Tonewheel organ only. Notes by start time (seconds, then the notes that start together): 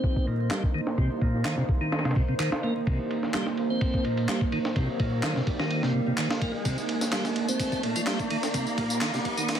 Already playing: C4
0.27 A#2
0.51 G3
0.74 D#3
0.98 C3
1.22 A#2
1.45 D#3
1.58 C3
1.81 D#3
2.05 C3
2.16 C3
2.29 C3
2.39 D#3
2.63 A#3
2.87 C3
3.34 G3
3.70 C4
4.05 A#2
4.29 G3
4.52 D#3
4.76 C3
5.00 A#2
5.23 D#3
5.36 C3
5.60 D#3
5.83 C3
5.94 C3
6.07 C3
6.18 D#3
6.41 A#3
6.65 C3
7.12 G3
7.49 C4
7.83 A#2
7.96 F3
8.07 G3
8.31 D#3
8.54 C3
8.78 A#2
9.01 D#3
9.14 C3
9.37 D#3